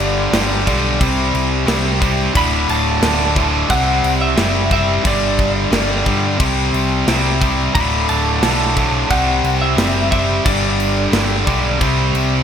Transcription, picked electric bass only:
0, 0, Header, 1, 2, 480
1, 0, Start_track
1, 0, Tempo, 674916
1, 1674, Time_signature, 4, 2, 24, 8
1, 8841, End_track
2, 0, Start_track
2, 0, Title_t, "Picked electric bass"
2, 0, Program_c, 0, 34
2, 0, Note_on_c, 0, 31, 97
2, 184, Note_off_c, 0, 31, 0
2, 232, Note_on_c, 0, 31, 102
2, 448, Note_off_c, 0, 31, 0
2, 475, Note_on_c, 0, 35, 98
2, 689, Note_off_c, 0, 35, 0
2, 717, Note_on_c, 0, 36, 92
2, 930, Note_off_c, 0, 36, 0
2, 952, Note_on_c, 0, 36, 90
2, 1167, Note_off_c, 0, 36, 0
2, 1187, Note_on_c, 0, 36, 95
2, 1617, Note_off_c, 0, 36, 0
2, 1675, Note_on_c, 0, 26, 102
2, 1888, Note_off_c, 0, 26, 0
2, 1910, Note_on_c, 0, 26, 95
2, 2125, Note_off_c, 0, 26, 0
2, 2150, Note_on_c, 0, 26, 106
2, 2578, Note_off_c, 0, 26, 0
2, 2629, Note_on_c, 0, 36, 98
2, 2844, Note_off_c, 0, 36, 0
2, 2870, Note_on_c, 0, 36, 92
2, 3084, Note_off_c, 0, 36, 0
2, 3112, Note_on_c, 0, 30, 84
2, 3539, Note_off_c, 0, 30, 0
2, 3588, Note_on_c, 0, 31, 100
2, 4017, Note_off_c, 0, 31, 0
2, 4065, Note_on_c, 0, 31, 100
2, 4281, Note_off_c, 0, 31, 0
2, 4311, Note_on_c, 0, 43, 80
2, 4525, Note_off_c, 0, 43, 0
2, 4552, Note_on_c, 0, 36, 98
2, 4765, Note_off_c, 0, 36, 0
2, 4785, Note_on_c, 0, 36, 90
2, 5002, Note_off_c, 0, 36, 0
2, 5029, Note_on_c, 0, 36, 85
2, 5458, Note_off_c, 0, 36, 0
2, 5514, Note_on_c, 0, 26, 108
2, 5727, Note_off_c, 0, 26, 0
2, 5754, Note_on_c, 0, 26, 96
2, 5967, Note_off_c, 0, 26, 0
2, 5989, Note_on_c, 0, 35, 93
2, 6419, Note_off_c, 0, 35, 0
2, 6473, Note_on_c, 0, 36, 99
2, 6688, Note_off_c, 0, 36, 0
2, 6709, Note_on_c, 0, 36, 90
2, 6925, Note_off_c, 0, 36, 0
2, 6948, Note_on_c, 0, 30, 85
2, 7379, Note_off_c, 0, 30, 0
2, 7438, Note_on_c, 0, 31, 97
2, 7865, Note_off_c, 0, 31, 0
2, 7909, Note_on_c, 0, 31, 96
2, 8127, Note_off_c, 0, 31, 0
2, 8158, Note_on_c, 0, 35, 95
2, 8372, Note_off_c, 0, 35, 0
2, 8397, Note_on_c, 0, 36, 96
2, 8612, Note_off_c, 0, 36, 0
2, 8630, Note_on_c, 0, 36, 90
2, 8841, Note_off_c, 0, 36, 0
2, 8841, End_track
0, 0, End_of_file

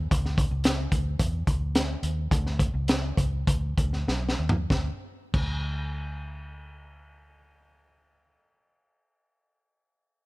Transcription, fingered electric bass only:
0, 0, Header, 1, 2, 480
1, 0, Start_track
1, 0, Tempo, 549451
1, 100, Time_signature, 4, 2, 24, 8
1, 2022, Tempo, 588813
1, 3462, Tempo, 634249
1, 8134, End_track
2, 0, Start_track
2, 0, Title_t, "Fingered electric bass"
2, 0, Program_c, 0, 33
2, 96, Note_on_c, 0, 38, 93
2, 395, Note_off_c, 0, 38, 0
2, 447, Note_on_c, 0, 37, 96
2, 749, Note_off_c, 0, 37, 0
2, 800, Note_on_c, 0, 38, 78
2, 1005, Note_off_c, 0, 38, 0
2, 1044, Note_on_c, 0, 40, 96
2, 1248, Note_off_c, 0, 40, 0
2, 1285, Note_on_c, 0, 38, 90
2, 1696, Note_off_c, 0, 38, 0
2, 1771, Note_on_c, 0, 39, 86
2, 1980, Note_off_c, 0, 39, 0
2, 2019, Note_on_c, 0, 38, 97
2, 2315, Note_off_c, 0, 38, 0
2, 2368, Note_on_c, 0, 37, 96
2, 2669, Note_off_c, 0, 37, 0
2, 2721, Note_on_c, 0, 37, 85
2, 2927, Note_off_c, 0, 37, 0
2, 2966, Note_on_c, 0, 38, 82
2, 3173, Note_off_c, 0, 38, 0
2, 3212, Note_on_c, 0, 38, 90
2, 3422, Note_off_c, 0, 38, 0
2, 3458, Note_on_c, 0, 35, 89
2, 3657, Note_off_c, 0, 35, 0
2, 3694, Note_on_c, 0, 39, 80
2, 3896, Note_off_c, 0, 39, 0
2, 3932, Note_on_c, 0, 38, 89
2, 4068, Note_off_c, 0, 38, 0
2, 4414, Note_on_c, 0, 38, 88
2, 6694, Note_off_c, 0, 38, 0
2, 8134, End_track
0, 0, End_of_file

